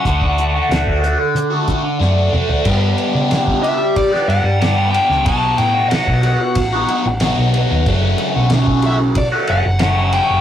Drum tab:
CC |----------------|x---------------|----------------|----------------|
RD |----------------|--x-x-x-x-x-x-x-|x-x-x-x-x-x-x-x-|x-x-x-x-x-x-x-x-|
HH |x-x-x-x-x-x-----|----------------|----------------|----------------|
SD |----o-------o---|----o----o--o--o|----o-------o---|----o-------o---|
T2 |--------------o-|----------------|----------------|----------------|
FT |---------------o|----------------|----------------|----------------|
BD |oo---o----o-----|o----o--o-------|o----o--o-------|o----o--o-------|